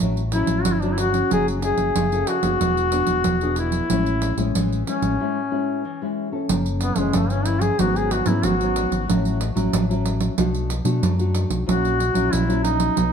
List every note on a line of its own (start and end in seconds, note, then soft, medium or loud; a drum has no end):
0.00 0.42 A1 medium
0.00 0.63 A2 medium
0.00 0.20 F#3 medium
0.00 0.20 C#4 soft
0.00 0.20 E4 soft
0.00 pandeiro medium
0.17 pandeiro soft
0.32 0.77 F#3 medium
0.32 0.77 C#4 medium
0.32 0.64 E4 medium
0.32 0.77 E4 medium
0.32 pandeiro medium
0.47 0.63 A1 medium
0.47 pandeiro medium
0.62 0.74 F#4 medium
0.62 pandeiro medium
0.66 1.21 G1 medium
0.66 1.28 E3 soft
0.72 0.83 E4 medium
0.81 1.09 F#3 medium
0.81 1.09 C#4 medium
0.81 0.94 D4 medium
0.81 1.10 E4 medium
0.81 pandeiro soft
0.92 0.98 E4 medium
0.98 1.29 F#4 medium
0.98 pandeiro medium
1.12 1.61 C#4 medium
1.12 1.61 E4 medium
1.12 pandeiro soft
1.30 1.72 F#1 loud
1.30 1.92 F#3 medium
1.30 1.47 G#4 loud
1.30 pandeiro medium
1.48 pandeiro soft
1.62 2.06 C#4 medium
1.62 2.06 E4 medium
1.62 2.29 G#4 medium
1.62 pandeiro medium
1.78 1.92 F#1 medium
1.78 pandeiro medium
1.95 2.23 F#1 medium
1.95 2.57 C#3 medium
1.95 pandeiro medium
2.12 2.39 C#4 medium
2.12 2.39 E4 medium
2.12 2.39 A4 medium
2.12 pandeiro soft
2.27 3.57 F#4 loud
2.27 pandeiro medium
2.43 2.57 F#1 medium
2.43 2.87 B3 medium
2.43 2.87 D4 medium
2.43 2.87 G#4 medium
2.43 pandeiro medium
2.60 3.02 E1 medium
2.60 3.22 E3 medium
2.60 pandeiro medium
2.77 pandeiro soft
2.92 3.22 B3 medium
2.92 3.23 D4 medium
2.92 3.23 G#4 medium
2.92 pandeiro medium
3.07 3.22 E1 medium
3.07 pandeiro medium
3.24 3.80 E1 medium
3.24 3.86 B2 soft
3.24 pandeiro medium
3.41 3.85 B3 medium
3.41 3.85 D4 medium
3.41 3.85 G#4 medium
3.41 pandeiro soft
3.56 4.57 E4 loud
3.56 pandeiro medium
3.72 pandeiro soft
3.90 4.31 A1 loud
3.90 4.51 A2 medium
3.90 4.33 G#3 medium
3.90 4.34 C#4 medium
3.90 4.34 E4 medium
3.90 pandeiro medium
4.06 pandeiro soft
4.22 pandeiro medium
4.37 4.52 A1 medium
4.37 4.81 G#3 medium
4.37 4.82 C#4 medium
4.37 4.82 E4 medium
4.37 pandeiro soft
4.55 4.82 A1 medium
4.55 5.17 E3 soft
4.55 pandeiro medium
4.73 pandeiro soft
4.87 5.14 G#3 medium
4.87 5.14 C#4 medium
4.87 6.13 C#4 medium
4.87 5.15 E4 medium
4.87 pandeiro medium
5.02 5.16 A1 medium
5.02 pandeiro medium
5.20 5.82 A2 soft
5.20 5.39 G#3 soft
5.20 5.39 C#4 soft
5.20 5.39 E4 medium
5.50 5.82 G#3 soft
5.50 5.82 C#4 medium
5.50 5.82 E4 medium
5.85 6.46 E3 medium
6.02 6.28 G#3 medium
6.02 6.28 C#4 medium
6.02 6.29 E4 medium
6.32 6.92 C#4 soft
6.32 6.92 E4 soft
6.32 6.92 A4 medium
6.49 6.91 F#1 loud
6.49 7.11 F#2 medium
6.49 pandeiro medium
6.66 pandeiro soft
6.81 6.99 B3 medium
6.81 pandeiro medium
6.96 7.11 F#1 medium
6.96 7.25 E3 medium
6.96 7.17 G#3 medium
6.96 7.25 A3 medium
6.96 7.25 C#4 medium
6.96 pandeiro medium
7.13 7.69 G1 medium
7.13 7.76 C#3 medium
7.13 7.33 A3 medium
7.13 pandeiro medium
7.30 7.74 E3 medium
7.30 7.74 A3 medium
7.30 7.47 C#4 medium
7.30 7.74 C#4 medium
7.30 pandeiro soft
7.45 7.63 E4 medium
7.45 pandeiro medium
7.61 7.81 G#4 medium
7.61 pandeiro medium
7.78 8.20 G#1 medium
7.78 8.40 G#2 medium
7.78 8.22 F#3 medium
7.78 8.22 B3 medium
7.78 8.23 C#4 medium
7.78 7.99 F#4 medium
7.78 pandeiro medium
7.96 8.14 G#4 medium
7.96 pandeiro soft
8.11 8.29 F#4 medium
8.11 pandeiro medium
8.25 8.41 G#2 medium
8.25 8.54 F#3 medium
8.25 8.54 B3 medium
8.25 8.54 C#4 medium
8.25 8.47 E4 medium
8.25 pandeiro medium
8.43 8.85 G#1 medium
8.43 9.05 G#2 medium
8.43 9.09 F#4 medium
8.43 pandeiro medium
8.60 9.03 F#3 medium
8.60 9.03 B3 medium
8.60 9.04 C#4 medium
8.60 pandeiro soft
8.76 pandeiro medium
8.91 9.05 G#1 medium
8.91 pandeiro medium
9.08 9.50 A1 medium
9.08 9.70 A2 medium
9.08 9.39 F#3 medium
9.08 9.39 C#4 medium
9.08 9.39 E4 medium
9.08 pandeiro medium
9.25 pandeiro soft
9.41 pandeiro medium
9.55 9.70 A1 medium
9.55 9.83 F#3 medium
9.55 9.84 C#4 medium
9.55 9.84 E4 medium
9.55 pandeiro medium
9.73 10.28 A1 medium
9.73 10.35 A2 medium
9.73 pandeiro medium
9.90 10.33 F#3 medium
9.90 10.33 C#4 medium
9.90 10.34 E4 medium
9.90 pandeiro soft
10.06 pandeiro medium
10.20 pandeiro medium
10.38 10.79 B1 medium
10.38 11.00 B2 medium
10.38 10.69 A3 medium
10.38 10.69 D4 soft
10.38 10.69 F#4 medium
10.38 pandeiro medium
10.55 pandeiro soft
10.70 pandeiro medium
10.85 10.99 B2 medium
10.85 11.13 A3 medium
10.85 11.13 D4 medium
10.85 11.13 F#4 medium
10.85 pandeiro medium
11.02 11.44 F#2 medium
11.02 11.64 F#3 medium
11.02 pandeiro medium
11.18 11.62 A3 medium
11.18 11.63 D4 medium
11.18 11.63 F#4 medium
11.18 pandeiro soft
11.35 pandeiro medium
11.50 11.64 B1 medium
11.50 pandeiro medium
11.66 12.09 A#1 loud
11.66 12.29 A#2 medium
11.66 11.98 F#3 medium
11.66 11.98 C#4 medium
11.66 11.98 E4 medium
11.66 12.34 F#4 medium
11.66 pandeiro medium
11.85 pandeiro soft
12.00 pandeiro medium
12.13 12.29 A#1 medium
12.13 12.42 F#3 medium
12.13 12.43 C#4 medium
12.13 12.43 E4 medium
12.13 pandeiro medium
12.30 12.88 A#1 medium
12.30 12.93 A#2 medium
12.30 12.63 E4 medium
12.30 pandeiro medium
12.47 12.94 F#3 medium
12.47 12.95 C#4 medium
12.47 12.95 E4 medium
12.47 pandeiro soft
12.64 13.13 D#4 loud
12.64 pandeiro medium
12.80 pandeiro medium
12.96 13.13 B1 medium
12.96 13.13 B2 medium
12.96 13.07 F#3 medium
12.96 13.07 B3 medium
12.96 13.07 D#4 medium
12.96 pandeiro medium